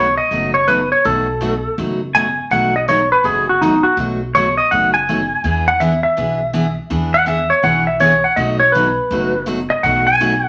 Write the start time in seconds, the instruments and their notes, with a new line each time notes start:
Already playing: upright bass B1, electric slide guitar C#5
0.18 electric slide guitar D#5
0.31 upright bass F#1, steel-string acoustic guitar B2 F#3 A3 D#4 F#4
0.54 electric slide guitar C#5
0.68 steel-string acoustic guitar B2 F#3 A3 D#4 F#4, electric slide guitar B4
0.92 electric slide guitar C#5
1.05 upright bass B1, steel-string acoustic guitar B2 F#3 A3 D#4 F#4, electric slide guitar A4
1.41 steel-string acoustic guitar B2 F#3 A3 D#4 F#4
1.78 upright bass F#1, steel-string acoustic guitar B2 F#3 A3 D#4 F#4
2.15 steel-string acoustic guitar B2 F#3 A3 D#4 F#4, electric slide guitar G#5
2.51 upright bass B1, steel-string acoustic guitar B2 F#3 A3 D#4 F#4, electric slide guitar F#5
2.76 electric slide guitar D#5
2.88 steel-string acoustic guitar B2 F#3 A3 D#4 F#4, electric slide guitar C#5
3.12 electric slide guitar B4
3.24 upright bass F#1, steel-string acoustic guitar B2 F#3 A3 D#4 F#4, electric slide guitar G#4
3.49 electric slide guitar F#4
3.61 steel-string acoustic guitar B2 F#3 A3 D#4 F#4, electric slide guitar D#4
3.83 electric slide guitar F#4
3.97 upright bass B1, steel-string acoustic guitar B2 F#3 A3 D#4 F#4
4.35 steel-string acoustic guitar B2 F#3 A3 D#4 F#4, electric slide guitar C#5
4.57 electric slide guitar D#5
4.71 upright bass F#1, steel-string acoustic guitar B2 F#3 A3 D#4 F#4, electric slide guitar F#5
4.94 electric slide guitar G#5
5.09 steel-string acoustic guitar B2 F#3 A3 D#4 F#4
5.44 upright bass E2, steel-string acoustic guitar E3 B3 D4 G#4
5.68 electric slide guitar F#5
5.80 steel-string acoustic guitar E3 B3 D4 G#4, electric slide guitar E5
6.03 electric slide guitar E5
6.17 upright bass B1, steel-string acoustic guitar E3 B3 D4 G#4
6.53 steel-string acoustic guitar E3 B3 D4 G#4
6.90 upright bass E2, steel-string acoustic guitar E3 B3 D4 G#4
7.14 electric slide guitar F#5
7.26 steel-string acoustic guitar E3 B3 D4 G#4, electric slide guitar E5
7.50 electric slide guitar C#5
7.63 upright bass B1, steel-string acoustic guitar E3 B3 D4 G#4, electric slide guitar F#5
7.87 electric slide guitar E5
8.00 steel-string acoustic guitar E3 B3 D4 G#4, electric slide guitar C#5
8.24 electric slide guitar F#5
8.36 upright bass B1, steel-string acoustic guitar B2 F#3 A3 D#4 F#4, electric slide guitar D#5
8.60 electric slide guitar C#5
8.72 steel-string acoustic guitar B2 F#3 A3 D#4, electric slide guitar B4
8.76 steel-string acoustic guitar F#4
9.11 upright bass F#1, steel-string acoustic guitar B2 F#3 A3 D#4 F#4
9.46 steel-string acoustic guitar B2 F#3 A3 D#4 F#4
9.70 electric slide guitar D#5
9.83 upright bass B1, steel-string acoustic guitar B2 F#3 A3 D#4 F#4, electric slide guitar F#5
10.07 electric slide guitar G#5
10.20 steel-string acoustic guitar B2 F#3 A3 D#4 F#4